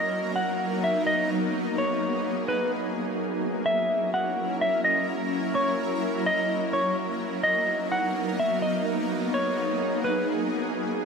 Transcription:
0, 0, Header, 1, 3, 480
1, 0, Start_track
1, 0, Key_signature, 5, "major"
1, 0, Tempo, 472441
1, 1323, Time_signature, 4, 2, 24, 8
1, 11227, End_track
2, 0, Start_track
2, 0, Title_t, "Clean electric guitar"
2, 0, Program_c, 0, 27
2, 0, Note_on_c, 0, 75, 94
2, 329, Note_off_c, 0, 75, 0
2, 362, Note_on_c, 0, 78, 83
2, 814, Note_off_c, 0, 78, 0
2, 852, Note_on_c, 0, 76, 78
2, 1076, Note_off_c, 0, 76, 0
2, 1083, Note_on_c, 0, 75, 77
2, 1311, Note_off_c, 0, 75, 0
2, 1811, Note_on_c, 0, 73, 78
2, 2487, Note_off_c, 0, 73, 0
2, 2524, Note_on_c, 0, 71, 93
2, 2752, Note_off_c, 0, 71, 0
2, 3715, Note_on_c, 0, 76, 89
2, 4170, Note_off_c, 0, 76, 0
2, 4205, Note_on_c, 0, 78, 80
2, 4655, Note_off_c, 0, 78, 0
2, 4688, Note_on_c, 0, 76, 93
2, 4914, Note_off_c, 0, 76, 0
2, 4922, Note_on_c, 0, 75, 77
2, 5150, Note_off_c, 0, 75, 0
2, 5639, Note_on_c, 0, 73, 80
2, 6320, Note_off_c, 0, 73, 0
2, 6364, Note_on_c, 0, 75, 99
2, 6815, Note_off_c, 0, 75, 0
2, 6840, Note_on_c, 0, 73, 87
2, 7070, Note_off_c, 0, 73, 0
2, 7554, Note_on_c, 0, 75, 96
2, 8009, Note_off_c, 0, 75, 0
2, 8043, Note_on_c, 0, 78, 88
2, 8494, Note_off_c, 0, 78, 0
2, 8530, Note_on_c, 0, 76, 83
2, 8755, Note_off_c, 0, 76, 0
2, 8760, Note_on_c, 0, 75, 76
2, 8990, Note_off_c, 0, 75, 0
2, 9489, Note_on_c, 0, 73, 85
2, 10165, Note_off_c, 0, 73, 0
2, 10204, Note_on_c, 0, 71, 96
2, 10432, Note_off_c, 0, 71, 0
2, 11227, End_track
3, 0, Start_track
3, 0, Title_t, "Ambient pad"
3, 0, Program_c, 1, 92
3, 0, Note_on_c, 1, 54, 78
3, 0, Note_on_c, 1, 58, 74
3, 0, Note_on_c, 1, 59, 70
3, 0, Note_on_c, 1, 63, 71
3, 0, Note_on_c, 1, 70, 85
3, 1283, Note_off_c, 1, 70, 0
3, 1321, Note_on_c, 1, 68, 86
3, 3203, Note_off_c, 1, 54, 0
3, 3205, Note_off_c, 1, 59, 0
3, 3205, Note_off_c, 1, 63, 0
3, 3223, Note_off_c, 1, 68, 0
3, 3240, Note_on_c, 1, 54, 77
3, 3240, Note_on_c, 1, 61, 69
3, 3240, Note_on_c, 1, 64, 72
3, 3241, Note_on_c, 1, 70, 86
3, 7043, Note_off_c, 1, 58, 0
3, 7043, Note_off_c, 1, 61, 0
3, 7043, Note_off_c, 1, 64, 0
3, 7044, Note_off_c, 1, 70, 0
3, 7083, Note_on_c, 1, 58, 72
3, 7083, Note_on_c, 1, 63, 72
3, 7083, Note_on_c, 1, 70, 85
3, 7084, Note_on_c, 1, 59, 72
3, 8984, Note_off_c, 1, 70, 0
3, 9004, Note_on_c, 1, 68, 85
3, 10881, Note_off_c, 1, 54, 0
3, 10885, Note_off_c, 1, 58, 0
3, 10885, Note_off_c, 1, 59, 0
3, 10885, Note_off_c, 1, 63, 0
3, 10904, Note_off_c, 1, 68, 0
3, 10921, Note_on_c, 1, 54, 75
3, 10922, Note_on_c, 1, 58, 72
3, 10922, Note_on_c, 1, 61, 74
3, 10922, Note_on_c, 1, 64, 70
3, 10922, Note_on_c, 1, 70, 86
3, 11227, Note_off_c, 1, 54, 0
3, 11227, Note_off_c, 1, 58, 0
3, 11227, Note_off_c, 1, 61, 0
3, 11227, Note_off_c, 1, 64, 0
3, 11227, Note_off_c, 1, 70, 0
3, 11227, End_track
0, 0, End_of_file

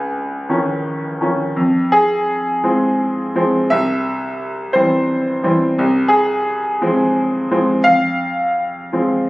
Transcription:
0, 0, Header, 1, 2, 480
1, 0, Start_track
1, 0, Key_signature, -4, "minor"
1, 0, Tempo, 715137
1, 1053, Time_signature, 6, 3, 24, 8
1, 2487, Tempo, 689655
1, 4887, Tempo, 710900
1, 6334, End_track
2, 0, Start_track
2, 0, Title_t, "Upright piano"
2, 0, Program_c, 0, 0
2, 0, Control_c, 0, 64, 127
2, 0, Note_on_c, 0, 37, 54
2, 0, Note_on_c, 0, 80, 75
2, 305, Note_off_c, 0, 80, 0
2, 331, Note_on_c, 0, 51, 35
2, 333, Note_on_c, 0, 53, 33
2, 335, Note_on_c, 0, 61, 42
2, 798, Note_off_c, 0, 51, 0
2, 800, Note_off_c, 0, 53, 0
2, 800, Note_off_c, 0, 61, 0
2, 812, Note_on_c, 0, 51, 34
2, 815, Note_on_c, 0, 53, 33
2, 818, Note_on_c, 0, 61, 39
2, 1030, Note_off_c, 0, 37, 0
2, 1046, Note_off_c, 0, 51, 0
2, 1048, Note_off_c, 0, 53, 0
2, 1049, Note_off_c, 0, 61, 0
2, 1050, Note_on_c, 0, 41, 53
2, 1062, Control_c, 0, 64, 0
2, 1177, Control_c, 0, 64, 127
2, 1289, Note_on_c, 0, 68, 74
2, 1769, Note_on_c, 0, 53, 38
2, 1771, Note_on_c, 0, 56, 37
2, 1773, Note_on_c, 0, 60, 42
2, 2233, Note_off_c, 0, 53, 0
2, 2234, Note_off_c, 0, 56, 0
2, 2235, Note_off_c, 0, 60, 0
2, 2251, Note_on_c, 0, 53, 42
2, 2254, Note_on_c, 0, 56, 38
2, 2256, Note_on_c, 0, 60, 44
2, 2458, Note_off_c, 0, 68, 0
2, 2459, Note_off_c, 0, 41, 0
2, 2481, Note_off_c, 0, 53, 0
2, 2482, Note_off_c, 0, 56, 0
2, 2484, Note_off_c, 0, 60, 0
2, 2485, Note_on_c, 0, 76, 85
2, 2494, Note_on_c, 0, 36, 60
2, 2495, Control_c, 0, 64, 0
2, 2612, Control_c, 0, 64, 127
2, 3184, Note_off_c, 0, 76, 0
2, 3201, Note_on_c, 0, 72, 64
2, 3215, Note_on_c, 0, 52, 44
2, 3217, Note_on_c, 0, 55, 38
2, 3218, Note_on_c, 0, 60, 47
2, 3675, Note_off_c, 0, 52, 0
2, 3677, Note_off_c, 0, 55, 0
2, 3677, Note_off_c, 0, 60, 0
2, 3688, Note_on_c, 0, 52, 49
2, 3694, Note_on_c, 0, 55, 41
2, 3697, Note_on_c, 0, 60, 50
2, 3715, Note_off_c, 0, 72, 0
2, 3903, Note_off_c, 0, 36, 0
2, 3919, Note_off_c, 0, 52, 0
2, 3923, Note_off_c, 0, 55, 0
2, 3924, Note_off_c, 0, 60, 0
2, 3935, Control_c, 0, 64, 0
2, 3935, Note_on_c, 0, 36, 65
2, 4062, Control_c, 0, 64, 127
2, 4143, Note_on_c, 0, 68, 72
2, 4651, Note_on_c, 0, 53, 42
2, 4654, Note_on_c, 0, 56, 42
2, 4659, Note_on_c, 0, 60, 49
2, 5113, Note_off_c, 0, 53, 0
2, 5115, Note_off_c, 0, 56, 0
2, 5117, Note_off_c, 0, 60, 0
2, 5128, Note_on_c, 0, 53, 42
2, 5130, Note_on_c, 0, 56, 39
2, 5132, Note_on_c, 0, 60, 49
2, 5325, Note_off_c, 0, 68, 0
2, 5340, Note_off_c, 0, 36, 0
2, 5350, Note_on_c, 0, 77, 83
2, 5357, Note_off_c, 0, 53, 0
2, 5358, Note_off_c, 0, 56, 0
2, 5359, Note_off_c, 0, 60, 0
2, 5367, Note_on_c, 0, 41, 58
2, 5372, Control_c, 0, 64, 0
2, 5479, Control_c, 0, 64, 127
2, 6083, Note_on_c, 0, 53, 39
2, 6088, Note_on_c, 0, 56, 34
2, 6089, Note_on_c, 0, 60, 43
2, 6294, Note_off_c, 0, 77, 0
2, 6334, Note_off_c, 0, 41, 0
2, 6334, Note_off_c, 0, 53, 0
2, 6334, Note_off_c, 0, 56, 0
2, 6334, Note_off_c, 0, 60, 0
2, 6334, End_track
0, 0, End_of_file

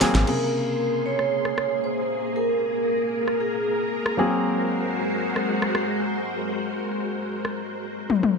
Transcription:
0, 0, Header, 1, 7, 480
1, 0, Start_track
1, 0, Key_signature, -5, "minor"
1, 0, Tempo, 521739
1, 250, Time_signature, 4, 2, 24, 8
1, 7713, End_track
2, 0, Start_track
2, 0, Title_t, "Vibraphone"
2, 0, Program_c, 0, 11
2, 259, Note_on_c, 0, 70, 89
2, 974, Note_on_c, 0, 73, 99
2, 996, Note_off_c, 0, 70, 0
2, 1692, Note_on_c, 0, 72, 91
2, 1713, Note_off_c, 0, 73, 0
2, 2171, Note_on_c, 0, 70, 92
2, 2185, Note_off_c, 0, 72, 0
2, 3132, Note_on_c, 0, 68, 75
2, 3159, Note_off_c, 0, 70, 0
2, 3814, Note_off_c, 0, 68, 0
2, 7713, End_track
3, 0, Start_track
3, 0, Title_t, "String machine"
3, 0, Program_c, 1, 50
3, 250, Note_on_c, 1, 58, 73
3, 250, Note_on_c, 1, 68, 66
3, 251, Note_on_c, 1, 84, 67
3, 2151, Note_off_c, 1, 84, 0
3, 2175, Note_on_c, 1, 70, 72
3, 3814, Note_off_c, 1, 58, 0
3, 3814, Note_off_c, 1, 68, 0
3, 3848, Note_on_c, 1, 56, 76
3, 3848, Note_on_c, 1, 66, 68
3, 3849, Note_on_c, 1, 72, 80
3, 7413, Note_off_c, 1, 56, 0
3, 7413, Note_off_c, 1, 66, 0
3, 7413, Note_off_c, 1, 72, 0
3, 7416, Note_off_c, 1, 70, 0
3, 7713, End_track
4, 0, Start_track
4, 0, Title_t, "Grand piano"
4, 0, Program_c, 2, 0
4, 4, Note_on_c, 2, 54, 78
4, 9, Note_on_c, 2, 58, 73
4, 11, Note_on_c, 2, 60, 71
4, 13, Note_on_c, 2, 68, 89
4, 219, Note_off_c, 2, 54, 0
4, 221, Note_off_c, 2, 58, 0
4, 222, Note_off_c, 2, 60, 0
4, 224, Note_off_c, 2, 68, 0
4, 243, Note_on_c, 2, 49, 64
4, 251, Note_on_c, 2, 58, 57
4, 257, Note_on_c, 2, 48, 59
4, 262, Note_on_c, 2, 68, 69
4, 3819, Note_off_c, 2, 49, 0
4, 3823, Note_off_c, 2, 58, 0
4, 3826, Note_off_c, 2, 48, 0
4, 3828, Note_off_c, 2, 68, 0
4, 3838, Note_on_c, 2, 54, 66
4, 3846, Note_on_c, 2, 58, 63
4, 3852, Note_on_c, 2, 60, 61
4, 3857, Note_on_c, 2, 68, 76
4, 7444, Note_off_c, 2, 54, 0
4, 7448, Note_off_c, 2, 58, 0
4, 7451, Note_off_c, 2, 60, 0
4, 7453, Note_off_c, 2, 68, 0
4, 7713, End_track
5, 0, Start_track
5, 0, Title_t, "Fingered electric bass"
5, 0, Program_c, 3, 33
5, 131, Note_on_c, 3, 32, 103
5, 204, Note_off_c, 3, 32, 0
5, 7713, End_track
6, 0, Start_track
6, 0, Title_t, "Muted fingered electric bass strokes"
6, 8, Note_on_c, 9, 29, 44
6, 100, Note_off_c, 9, 29, 0
6, 7713, End_track
7, 0, Start_track
7, 0, Title_t, "Drums"
7, 9, Note_on_c, 9, 38, 84
7, 9, Note_on_c, 9, 46, 93
7, 9, Note_on_c, 9, 82, 82
7, 101, Note_off_c, 9, 38, 0
7, 101, Note_off_c, 9, 46, 0
7, 101, Note_off_c, 9, 82, 0
7, 136, Note_on_c, 9, 38, 95
7, 136, Note_on_c, 9, 42, 55
7, 136, Note_on_c, 9, 82, 43
7, 228, Note_off_c, 9, 38, 0
7, 228, Note_off_c, 9, 42, 0
7, 228, Note_off_c, 9, 82, 0
7, 252, Note_on_c, 9, 49, 75
7, 344, Note_off_c, 9, 49, 0
7, 1095, Note_on_c, 9, 37, 51
7, 1187, Note_off_c, 9, 37, 0
7, 1336, Note_on_c, 9, 37, 63
7, 1428, Note_off_c, 9, 37, 0
7, 1451, Note_on_c, 9, 37, 69
7, 1543, Note_off_c, 9, 37, 0
7, 3014, Note_on_c, 9, 37, 51
7, 3106, Note_off_c, 9, 37, 0
7, 3733, Note_on_c, 9, 37, 68
7, 3825, Note_off_c, 9, 37, 0
7, 4932, Note_on_c, 9, 37, 58
7, 5024, Note_off_c, 9, 37, 0
7, 5173, Note_on_c, 9, 37, 67
7, 5265, Note_off_c, 9, 37, 0
7, 5288, Note_on_c, 9, 37, 69
7, 5380, Note_off_c, 9, 37, 0
7, 6852, Note_on_c, 9, 37, 58
7, 6944, Note_off_c, 9, 37, 0
7, 7450, Note_on_c, 9, 48, 57
7, 7542, Note_off_c, 9, 48, 0
7, 7574, Note_on_c, 9, 48, 57
7, 7666, Note_off_c, 9, 48, 0
7, 7713, End_track
0, 0, End_of_file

